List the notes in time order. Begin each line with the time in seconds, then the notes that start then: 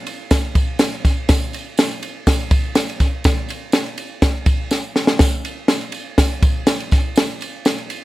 0.07 ride, tambourine
0.31 kick, snare, ride, tambourine
0.55 kick, ride, tambourine
0.79 snare, ride, tambourine
1.05 kick, snare, ride, tambourine
1.29 kick, snare, ride, tambourine
1.53 ride, tambourine
1.77 snare, ride, tambourine
1.91 ride
2.03 ride, tambourine
2.27 kick, snare, ride, tambourine
2.51 kick, ride, tambourine
2.75 snare, ride, tambourine
2.89 ride
3.00 kick, snare, ride, tambourine
3.24 kick, snare, ride, tambourine
3.49 ride, tambourine
3.72 snare, ride, tambourine
3.86 ride
3.98 ride, tambourine
4.22 kick, snare, ride, tambourine
4.46 kick, ride, tambourine
4.71 snare, tambourine
4.96 snare, tambourine
5.07 snare
5.19 kick, snare, tambourine, splash
5.45 ride, tambourine
5.68 snare, ride, tambourine
5.81 ride
5.92 ride, tambourine
6.18 kick, snare, ride, tambourine
6.43 kick, ride, tambourine
6.67 snare, ride, tambourine
6.80 ride
6.91 kick, snare, ride, tambourine
7.16 snare, ride, tambourine
7.41 ride, tambourine
7.65 snare, ride, tambourine
7.78 ride
7.90 ride, tambourine